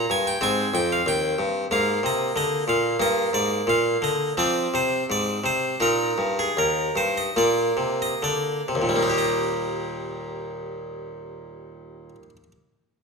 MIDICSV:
0, 0, Header, 1, 2, 480
1, 0, Start_track
1, 0, Key_signature, -3, "major"
1, 0, Tempo, 649351
1, 313, Time_signature, 4, 2, 24, 8
1, 2721, Tempo, 700935
1, 3681, Tempo, 743494
1, 4641, Tempo, 793651
1, 5121, Tempo, 854701
1, 5601, Tempo, 923077
1, 8104, End_track
2, 0, Start_track
2, 0, Title_t, "Harpsichord"
2, 0, Program_c, 0, 6
2, 0, Note_on_c, 0, 58, 49
2, 0, Note_on_c, 0, 82, 107
2, 74, Note_on_c, 0, 43, 68
2, 79, Note_off_c, 0, 82, 0
2, 81, Note_on_c, 0, 80, 106
2, 196, Note_off_c, 0, 80, 0
2, 202, Note_on_c, 0, 79, 105
2, 263, Note_off_c, 0, 43, 0
2, 282, Note_off_c, 0, 58, 0
2, 304, Note_on_c, 0, 60, 49
2, 305, Note_on_c, 0, 44, 76
2, 316, Note_off_c, 0, 79, 0
2, 318, Note_on_c, 0, 80, 116
2, 498, Note_off_c, 0, 44, 0
2, 544, Note_on_c, 0, 41, 65
2, 552, Note_on_c, 0, 79, 104
2, 553, Note_off_c, 0, 80, 0
2, 671, Note_off_c, 0, 79, 0
2, 683, Note_on_c, 0, 77, 99
2, 738, Note_off_c, 0, 41, 0
2, 786, Note_on_c, 0, 39, 71
2, 796, Note_off_c, 0, 77, 0
2, 799, Note_on_c, 0, 79, 117
2, 979, Note_off_c, 0, 39, 0
2, 1024, Note_on_c, 0, 43, 66
2, 1202, Note_off_c, 0, 79, 0
2, 1218, Note_off_c, 0, 43, 0
2, 1234, Note_off_c, 0, 60, 0
2, 1266, Note_on_c, 0, 44, 70
2, 1266, Note_on_c, 0, 58, 53
2, 1275, Note_on_c, 0, 77, 115
2, 1457, Note_off_c, 0, 44, 0
2, 1475, Note_off_c, 0, 77, 0
2, 1503, Note_on_c, 0, 48, 69
2, 1522, Note_on_c, 0, 75, 100
2, 1695, Note_off_c, 0, 48, 0
2, 1743, Note_on_c, 0, 50, 69
2, 1744, Note_off_c, 0, 75, 0
2, 1753, Note_on_c, 0, 75, 115
2, 1937, Note_off_c, 0, 50, 0
2, 1980, Note_on_c, 0, 46, 66
2, 1990, Note_off_c, 0, 75, 0
2, 1990, Note_on_c, 0, 77, 85
2, 2177, Note_off_c, 0, 46, 0
2, 2195, Note_off_c, 0, 77, 0
2, 2199, Note_off_c, 0, 58, 0
2, 2215, Note_on_c, 0, 43, 72
2, 2215, Note_on_c, 0, 58, 49
2, 2229, Note_on_c, 0, 75, 108
2, 2416, Note_off_c, 0, 43, 0
2, 2437, Note_off_c, 0, 75, 0
2, 2464, Note_on_c, 0, 44, 62
2, 2471, Note_on_c, 0, 74, 97
2, 2665, Note_off_c, 0, 44, 0
2, 2714, Note_on_c, 0, 46, 68
2, 2719, Note_off_c, 0, 74, 0
2, 2730, Note_on_c, 0, 77, 118
2, 2905, Note_off_c, 0, 46, 0
2, 2954, Note_on_c, 0, 50, 63
2, 2959, Note_off_c, 0, 77, 0
2, 2965, Note_on_c, 0, 75, 90
2, 3147, Note_off_c, 0, 50, 0
2, 3162, Note_off_c, 0, 58, 0
2, 3166, Note_off_c, 0, 75, 0
2, 3196, Note_on_c, 0, 53, 71
2, 3196, Note_on_c, 0, 60, 47
2, 3206, Note_on_c, 0, 74, 114
2, 3391, Note_off_c, 0, 53, 0
2, 3444, Note_off_c, 0, 74, 0
2, 3445, Note_on_c, 0, 48, 68
2, 3453, Note_on_c, 0, 72, 94
2, 3636, Note_off_c, 0, 48, 0
2, 3652, Note_off_c, 0, 72, 0
2, 3691, Note_on_c, 0, 44, 66
2, 3701, Note_on_c, 0, 74, 95
2, 3872, Note_off_c, 0, 44, 0
2, 3909, Note_on_c, 0, 48, 63
2, 3922, Note_off_c, 0, 74, 0
2, 3922, Note_on_c, 0, 72, 97
2, 4101, Note_off_c, 0, 48, 0
2, 4124, Note_off_c, 0, 60, 0
2, 4144, Note_on_c, 0, 63, 49
2, 4147, Note_on_c, 0, 46, 69
2, 4155, Note_off_c, 0, 72, 0
2, 4157, Note_on_c, 0, 70, 99
2, 4343, Note_off_c, 0, 46, 0
2, 4389, Note_on_c, 0, 43, 57
2, 4520, Note_off_c, 0, 70, 0
2, 4526, Note_on_c, 0, 68, 79
2, 4588, Note_off_c, 0, 43, 0
2, 4642, Note_on_c, 0, 39, 64
2, 4645, Note_off_c, 0, 68, 0
2, 4650, Note_on_c, 0, 70, 94
2, 4832, Note_off_c, 0, 39, 0
2, 4875, Note_on_c, 0, 43, 58
2, 4883, Note_off_c, 0, 70, 0
2, 4883, Note_on_c, 0, 72, 89
2, 5001, Note_off_c, 0, 72, 0
2, 5007, Note_on_c, 0, 75, 86
2, 5070, Note_off_c, 0, 43, 0
2, 5094, Note_off_c, 0, 63, 0
2, 5121, Note_on_c, 0, 46, 64
2, 5122, Note_on_c, 0, 58, 47
2, 5124, Note_off_c, 0, 75, 0
2, 5130, Note_on_c, 0, 74, 94
2, 5307, Note_off_c, 0, 46, 0
2, 5349, Note_on_c, 0, 48, 59
2, 5480, Note_off_c, 0, 74, 0
2, 5490, Note_on_c, 0, 75, 84
2, 5548, Note_off_c, 0, 48, 0
2, 5605, Note_on_c, 0, 50, 59
2, 5608, Note_off_c, 0, 75, 0
2, 5612, Note_on_c, 0, 74, 81
2, 5799, Note_off_c, 0, 50, 0
2, 5843, Note_on_c, 0, 48, 57
2, 5879, Note_on_c, 0, 39, 61
2, 5912, Note_on_c, 0, 46, 52
2, 5950, Note_on_c, 0, 55, 52
2, 5980, Note_off_c, 0, 58, 0
2, 5986, Note_on_c, 0, 58, 51
2, 6021, Note_on_c, 0, 63, 48
2, 6039, Note_off_c, 0, 48, 0
2, 6057, Note_on_c, 0, 67, 51
2, 6095, Note_off_c, 0, 74, 0
2, 6101, Note_on_c, 0, 75, 68
2, 7614, Note_off_c, 0, 39, 0
2, 7647, Note_off_c, 0, 46, 0
2, 7685, Note_off_c, 0, 55, 0
2, 7721, Note_off_c, 0, 58, 0
2, 7756, Note_off_c, 0, 63, 0
2, 7792, Note_off_c, 0, 67, 0
2, 7836, Note_off_c, 0, 75, 0
2, 8104, End_track
0, 0, End_of_file